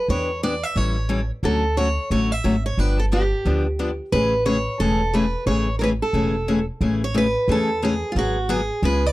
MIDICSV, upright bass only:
0, 0, Header, 1, 2, 480
1, 0, Start_track
1, 0, Key_signature, 3, "major"
1, 0, Tempo, 336511
1, 117, Time_signature, 4, 2, 24, 8
1, 13013, End_track
2, 0, Start_track
2, 0, Title_t, "Upright bass"
2, 0, Program_c, 0, 32
2, 120, Note_on_c, 0, 40, 74
2, 887, Note_off_c, 0, 40, 0
2, 1079, Note_on_c, 0, 33, 76
2, 1846, Note_off_c, 0, 33, 0
2, 2036, Note_on_c, 0, 38, 73
2, 2805, Note_off_c, 0, 38, 0
2, 3002, Note_on_c, 0, 33, 66
2, 3408, Note_off_c, 0, 33, 0
2, 3484, Note_on_c, 0, 32, 69
2, 3889, Note_off_c, 0, 32, 0
2, 3958, Note_on_c, 0, 31, 78
2, 4726, Note_off_c, 0, 31, 0
2, 4922, Note_on_c, 0, 38, 69
2, 5688, Note_off_c, 0, 38, 0
2, 5881, Note_on_c, 0, 33, 73
2, 6648, Note_off_c, 0, 33, 0
2, 6842, Note_on_c, 0, 28, 70
2, 7608, Note_off_c, 0, 28, 0
2, 7791, Note_on_c, 0, 33, 71
2, 8561, Note_off_c, 0, 33, 0
2, 8746, Note_on_c, 0, 28, 72
2, 9518, Note_off_c, 0, 28, 0
2, 9708, Note_on_c, 0, 33, 80
2, 10479, Note_off_c, 0, 33, 0
2, 10665, Note_on_c, 0, 40, 75
2, 11437, Note_off_c, 0, 40, 0
2, 11628, Note_on_c, 0, 32, 79
2, 12399, Note_off_c, 0, 32, 0
2, 12587, Note_on_c, 0, 37, 87
2, 13013, Note_off_c, 0, 37, 0
2, 13013, End_track
0, 0, End_of_file